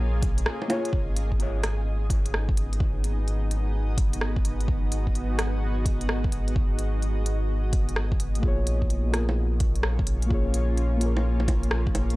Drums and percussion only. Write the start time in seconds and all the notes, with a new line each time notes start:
0.23 kick, open hi-hat
0.38 closed hi-hat
0.46 cross-stick
0.62 low bongo
0.70 open hi-hat, low bongo
0.85 closed hi-hat
0.93 kick
1.17 closed hi-hat
1.32 kick
1.40 closed hi-hat
1.64 cross-stick, closed hi-hat
2.10 kick, closed hi-hat
2.26 closed hi-hat
2.34 cross-stick
2.49 kick
2.57 closed hi-hat
2.73 closed hi-hat
2.80 kick
3.04 closed hi-hat
3.28 closed hi-hat
3.51 closed hi-hat
3.98 kick, closed hi-hat
4.13 closed hi-hat
4.21 cross-stick
4.36 kick
4.45 closed hi-hat
4.61 closed hi-hat
4.68 kick
4.92 closed hi-hat
5.07 kick
5.15 closed hi-hat
5.39 cross-stick, closed hi-hat
5.85 kick, closed hi-hat
6.01 closed hi-hat
6.09 cross-stick
6.24 kick
6.32 closed hi-hat
6.48 closed hi-hat
6.56 kick
6.79 closed hi-hat
7.02 closed hi-hat
7.26 closed hi-hat
7.73 kick, closed hi-hat
7.89 closed hi-hat
7.96 cross-stick
8.12 kick
8.20 closed hi-hat
8.35 closed hi-hat
8.43 kick
8.67 closed hi-hat
8.82 kick
8.90 closed hi-hat
9.14 cross-stick, closed hi-hat
9.29 low bongo
9.60 kick, closed hi-hat
9.76 closed hi-hat
9.83 cross-stick
9.99 kick
10.07 closed hi-hat
10.22 closed hi-hat
10.31 kick
10.54 closed hi-hat
10.78 closed hi-hat
11.01 closed hi-hat
11.17 low bongo
11.40 low bongo
11.48 kick, closed hi-hat, low bongo
11.63 closed hi-hat
11.71 cross-stick
11.87 kick
11.95 closed hi-hat, low bongo
12.10 closed hi-hat